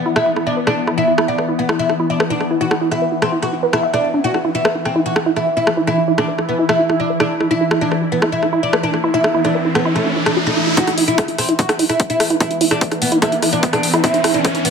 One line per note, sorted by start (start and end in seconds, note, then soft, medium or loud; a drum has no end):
0.00 10.76 E3 medium
0.00 4.26 B3 medium
0.06 0.11 E4 loud
0.16 0.29 E4 medium
0.16 cross-stick medium
0.26 0.31 E4 medium
0.36 0.41 E4 medium
0.36 cross-stick soft
0.47 0.55 D4 medium
0.47 0.50 E5 medium
0.57 0.60 B4 medium
0.67 0.80 D4 medium
0.67 0.72 E4 medium
0.67 cross-stick medium
0.87 0.93 E4 loud
0.87 cross-stick soft
0.98 1.01 E4 medium
0.98 1.10 E4 loud
1.08 1.13 E4 medium
1.18 1.23 E4 loud
1.18 cross-stick medium
1.28 1.41 D4 medium
1.28 1.36 F#5 medium
1.38 1.41 B4 medium
1.38 cross-stick soft
1.49 1.54 E4 medium
1.59 1.67 B3 medium
1.59 1.66 F#5 medium
1.69 1.74 E4 loud
1.69 cross-stick medium
1.79 1.92 E4 medium
1.89 1.95 E4 medium
1.89 cross-stick soft
2.00 2.05 E4 loud
2.10 2.18 D4 medium
2.10 2.13 E5 medium
2.20 2.23 B4 medium
2.20 cross-stick medium
2.30 2.43 D4 medium
2.30 2.35 E4 medium
2.40 cross-stick soft
2.51 2.56 E4 loud
2.61 2.64 E4 medium
2.61 2.74 F#4 medium
2.71 2.76 E4 medium
2.71 cross-stick medium
2.81 2.86 E4 loud
2.91 3.04 E4 medium
2.91 2.99 F#5 medium
2.91 cross-stick soft
3.02 3.05 B4 medium
3.12 3.17 E4 medium
3.22 3.31 C4 medium
3.22 3.30 F#5 medium
3.22 cross-stick medium
3.32 3.37 E4 loud
3.42 3.55 F#4 medium
3.42 cross-stick soft
3.53 3.58 E4 medium
3.63 3.68 B4 medium
3.73 3.82 E4 medium
3.73 cross-stick medium
3.83 3.88 E5 loud
3.94 4.06 D4 medium
3.94 4.01 E4 medium
3.94 cross-stick soft
4.04 4.09 E5 medium
4.14 4.22 D4 loud
4.24 4.27 E4 medium
4.24 10.79 E4 medium
4.24 4.37 F#4 medium
4.34 4.39 E4 medium
4.34 cross-stick soft
4.45 4.50 E4 loud
4.55 4.60 E4 medium
4.55 4.68 E4 medium
4.65 4.68 B4 medium
4.65 cross-stick medium
4.75 4.80 E4 medium
4.85 4.94 C4 medium
4.85 4.93 F#5 medium
4.85 cross-stick soft
4.96 5.01 E4 loud
5.06 5.19 F#4 medium
5.16 5.21 E4 medium
5.16 cross-stick medium
5.26 5.31 E4 loud
5.36 5.45 E4 medium
5.36 5.39 E5 medium
5.36 cross-stick soft
5.47 5.50 B4 medium
5.57 5.62 E4 medium
5.57 5.70 E4 loud
5.67 cross-stick medium
5.77 5.82 E4 loud
5.87 6.00 E4 loud
5.87 5.90 E4 medium
5.87 cross-stick soft
5.98 6.03 E4 medium
6.08 6.13 E4 loud
6.18 6.31 D4 medium
6.18 6.23 E4 medium
6.18 cross-stick medium
6.28 6.31 B4 medium
6.38 6.44 E4 medium
6.38 cross-stick soft
6.49 6.57 B3 medium
6.49 6.56 F#5 medium
6.59 6.64 E4 loud
6.69 6.82 E4 medium
6.69 cross-stick medium
6.79 6.84 E4 medium
6.89 6.95 E4 loud
6.89 cross-stick soft
7.00 7.08 D4 medium
7.00 7.03 E5 medium
7.10 7.13 B4 medium
7.20 7.33 D4 medium
7.20 7.25 E4 medium
7.20 cross-stick medium
7.40 7.46 E4 loud
7.40 cross-stick soft
7.51 7.54 E4 medium
7.51 7.64 E4 loud
7.51 riser medium
7.61 7.66 E4 medium
7.71 7.76 E4 loud
7.71 cross-stick medium
7.81 7.94 D4 medium
7.81 7.86 E4 medium
7.91 7.95 B4 medium
7.91 cross-stick soft
8.02 8.07 E4 medium
8.12 8.20 B3 medium
8.12 8.20 F#5 medium
8.22 8.27 E4 loud
8.22 cross-stick medium
8.32 8.45 E4 medium
8.43 8.48 E4 medium
8.43 cross-stick soft
8.53 8.58 E4 loud
8.63 8.72 D4 medium
8.63 8.66 E5 medium
8.73 8.76 B4 medium
8.73 cross-stick medium
8.83 8.96 D4 medium
8.83 8.88 E4 medium
8.94 cross-stick soft
9.04 9.09 E4 loud
9.14 9.27 E4 medium
9.14 9.17 E4 medium
9.24 9.29 E4 medium
9.24 cross-stick medium
9.34 9.39 E4 loud
9.45 9.57 D4 medium
9.45 9.50 E4 medium
9.45 cross-stick soft
9.55 9.58 B4 medium
9.65 9.70 E4 medium
9.75 9.84 B3 medium
9.75 9.83 F#5 medium
9.75 cross-stick medium
9.85 9.90 E4 loud
9.96 10.08 A3 medium
9.96 cross-stick soft
10.06 10.11 E4 medium
10.16 10.24 E4 medium
10.26 10.35 A3 medium
10.26 cross-stick medium
10.36 10.44 F#4 medium
10.47 10.59 A3 loud
10.47 10.52 D4 medium
10.47 cross-stick soft
10.57 10.62 E4 medium
10.67 10.70 E4 medium
10.77 14.70 E3 medium
10.77 14.06 B3 medium
10.77 10.80 E4 medium
10.77 10.90 F#4 loud
10.77 kick loud
10.77 closed hi-hat loud
10.77 riser medium
10.87 10.92 E4 medium
10.87 cross-stick soft
10.87 closed hi-hat medium
10.98 11.03 E4 loud
10.98 open hi-hat loud
11.08 11.21 E4 medium
11.08 11.13 E4 medium
11.08 closed hi-hat medium
11.18 11.21 B4 medium
11.18 kick loud
11.18 cross-stick medium
11.18 closed hi-hat medium
11.28 11.33 E4 medium
11.28 closed hi-hat medium
11.38 11.47 C4 medium
11.38 11.46 F#5 medium
11.38 cross-stick soft
11.38 open hi-hat loud
11.49 11.54 E4 loud
11.49 closed hi-hat medium
11.59 11.72 F#4 medium
11.59 kick loud
11.59 closed hi-hat loud
11.69 11.74 E4 medium
11.69 cross-stick medium
11.69 closed hi-hat medium
11.79 11.84 E4 loud
11.79 open hi-hat loud
11.89 11.98 E4 medium
11.89 11.93 E5 medium
11.89 cross-stick soft
11.89 closed hi-hat medium
12.00 12.03 B4 medium
12.00 kick loud
12.00 closed hi-hat loud
12.10 12.15 E4 medium
12.10 12.23 E4 loud
12.10 closed hi-hat medium
12.20 cross-stick medium
12.20 open hi-hat loud
12.30 12.35 E4 loud
12.30 closed hi-hat medium
12.40 12.44 E4 medium
12.40 12.53 E4 loud
12.40 kick loud
12.40 cross-stick soft
12.40 closed hi-hat medium
12.51 12.56 E4 medium
12.51 closed hi-hat medium
12.61 12.66 E4 loud
12.61 open hi-hat loud
12.71 12.84 D4 medium
12.71 12.76 E4 medium
12.71 cross-stick medium
12.71 closed hi-hat soft
12.81 12.84 B4 medium
12.81 kick loud
12.81 closed hi-hat medium
12.91 12.97 E4 medium
12.91 cross-stick soft
12.91 closed hi-hat medium
13.02 13.10 B3 medium
13.02 13.09 F#5 medium
13.02 open hi-hat loud
13.12 13.17 E4 loud
13.12 closed hi-hat medium
13.22 13.35 E4 medium
13.22 kick loud
13.22 cross-stick medium
13.22 closed hi-hat medium
13.32 13.37 E4 medium
13.32 closed hi-hat medium
13.42 13.48 E4 medium
13.42 cross-stick soft
13.42 open hi-hat loud
13.53 13.61 D4 medium
13.53 13.56 E5 medium
13.53 closed hi-hat medium
13.63 13.66 B4 medium
13.63 kick loud
13.63 closed hi-hat loud
13.73 13.86 D4 medium
13.73 13.78 E4 medium
13.73 cross-stick medium
13.73 closed hi-hat medium
13.83 open hi-hat loud
13.94 13.99 E4 loud
13.94 cross-stick soft
13.94 closed hi-hat medium
14.04 14.70 E4 medium
14.04 14.17 E4 loud
14.04 kick loud
14.04 closed hi-hat medium
14.14 14.19 E4 medium
14.14 closed hi-hat medium
14.24 14.29 E4 loud
14.24 cross-stick medium
14.24 open hi-hat loud
14.34 14.47 D4 medium
14.34 14.39 E4 medium
14.34 closed hi-hat soft
14.45 14.48 B4 medium
14.45 kick loud
14.45 cross-stick soft
14.45 closed hi-hat medium
14.55 14.60 E4 medium
14.55 closed hi-hat soft
14.65 14.70 B3 medium
14.65 14.70 F#5 medium
14.65 open hi-hat loud